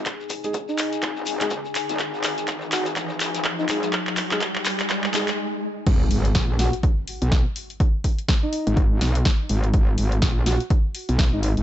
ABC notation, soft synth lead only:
X:1
M:4/4
L:1/16
Q:"Swing 16ths" 1/4=124
K:G#m
V:1 name="Soft synth lead"
z4 z D3 z8 | z6 F z6 D D z | z16 | z6 F z8 z |
z4 z D3 z8 | z6 F z6 D D z |]